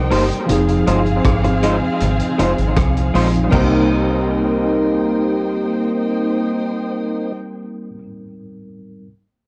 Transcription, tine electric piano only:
Already playing: G3 C4 D#4 A#4
0.46 F3 C4
0.50 D#4 G#4
3.14 F3 C4 D#4 F4
3.46 G3 C4
3.55 D#4 A#4

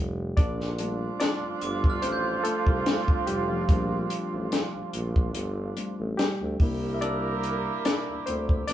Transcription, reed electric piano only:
Already playing: G3 A3 E4 G4
0.37 D4 D5
0.78 G3 A3 C4 D4
1.20 D4 D5
2.02 C4 C5
2.44 A3 A4
2.86 G3 A3 C4 D4
3.27 G3 G4
3.49 F3 F4
3.69 G3 A3 C4 D4
5.76 G3 A3 C4 D4
6.17 G3 G4
6.60 A#3 D4 E4
6.94 E5
7.01 D4 D5
7.85 D4 D5
8.26 C4 C5
8.67 D4 D5

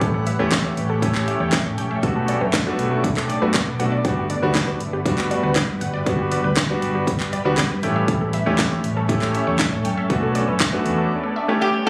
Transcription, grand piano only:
Already playing: A3 C#4 E4 G4
0.39 A3 C#4 E4 G4
1.02 A3 C#4 E4 G4
2.03 A3 B3 D4 F#4
2.66 A3 B3 D4 F#4
3.42 A3 B3 D4 F#4
3.79 A3 B3 D4 F#4
4.05 G3 B3 D4 F#4
4.42 G3 B3 D4 F#4
5.05 G3 B3 D4 F#4
6.06 G3 B3 D4 F#4
6.69 G3 B3 D4 F#4
7.45 G3 B3 D4 F#4
7.83 A3 C#4 E4 G4
8.46 A3 C#4 E4 G4
9.09 A3 C#4 E4 G4
10.10 A3 B3 D4 F#4
10.73 A3 B3 D4 F#4
11.36 A5
11.48 A3 C#4 E4 G4
11.61 G5
11.86 A3 C#4 E4 F#5

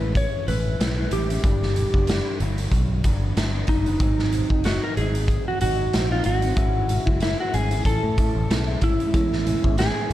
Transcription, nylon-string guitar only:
0.00 G#3 C#4 E4
0.47 A2 G#3 C#4 E4
0.79 A2 G#3 C#4 E4
0.97 G#3 C#4 E4
1.12 A2 G#3 C#4 E4
1.29 G#3 C#4 E4
1.43 G2 B3 D4
1.93 F#3 B3 D4
2.08 G2 B3 D4
2.40 G2 F#3 B3 D4
3.04 G2 F#3 B3 D4
3.36 G2 F#3 B3 D4
3.53 F#3 B3 D4
3.68 G2 F#3 B3 D4
3.86 F#3 B3 D4
4.01 G#2 F#3 C4 D#4
4.50 F#3 C4 D#4
4.64 G#2 F#3 C4 D#4
4.97 G#2 F#3 C4 D#4
5.61 G#2 F#3 C4 D#4
5.93 G#2 F#3 C4 D#4
6.09 F#3 C4 D#4
6.24 G#2 F#3 C4 D#4
6.41 F#3 C4 D#4
6.55 G#2 G#3 C#4 E4
6.88 G#2 G#3 C#4 E4
7.06 G#3 C#4 E4
7.21 G#2 G#3 C#4 E4
7.53 G#2 G#3 C#4 E4
7.71 G#3 C#4 E4
7.84 A2 C#4 E4
8.17 A2 C#4 E4
8.49 A2 G#3 C#4 E4
8.67 G#3 C#4 E4
8.82 A2 G#3 C#4 E4
9.00 G#3 C#4 E4
9.14 A2 G#3 C#4 E4
9.45 A2 G#3 C#4 E4
9.63 G#3 C#4 E4
9.77 A2 G#3 C#4 E4
10.09 A2

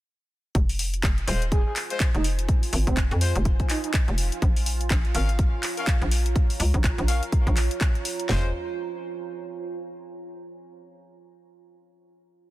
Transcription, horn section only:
1.28 G#3 F4 C5
1.90 G#3 F4 C5
3.21 G#3 F4 C5
5.15 C#4 A#4 F5
5.77 C#4 A#4 F5
7.08 C#4 A#4 F5
8.29 G#3 F4 C5

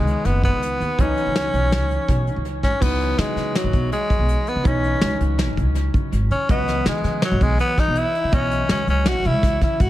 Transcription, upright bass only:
0.00 C#2
0.25 F#1
0.53 C#2
0.80 D#2
0.98 C#2
1.26 C#2
1.53 B1
1.81 C#2
2.08 B1
2.36 C#2
2.63 G#1
2.82 C#2
3.18 C#3
3.36 C#3
3.64 G#1
3.74 B1
4.19 B1
4.56 C#3
4.65 B1
5.02 C#2
5.21 C#2
5.49 G#1
5.58 C#2
5.94 C#3
6.12 G#1
6.31 C#3
6.49 C#2
6.86 C#3
7.04 C#3
7.31 G#1
7.41 B1
7.88 B1
8.24 C#3
8.33 B1
8.69 C#2
8.87 C#2
9.15 G#1
9.25 C#2
9.62 C#3
9.80 G#1

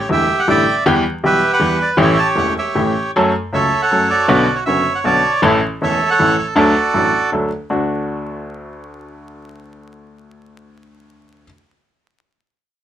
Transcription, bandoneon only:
0.00 C#5
0.12 G4 E5
0.39 F#5
0.50 D5 E5 G5
1.25 G4 B4 E5
1.53 B4 F#5
1.82 D5
2.01 G4 C#5 E5
2.19 A5
2.38 F#5
2.58 G4 C#5 E5
3.54 A4 C#5 E5
3.82 A4 C#5 F#5
4.10 F#4 D5
4.55 C#5
4.66 C#5 E5
4.95 F#5
5.05 C#5 D5 A5
5.83 A4 C#5 E5
6.10 A4 C#5 F#5
6.39 C#5
6.58 F#4 A4 D5

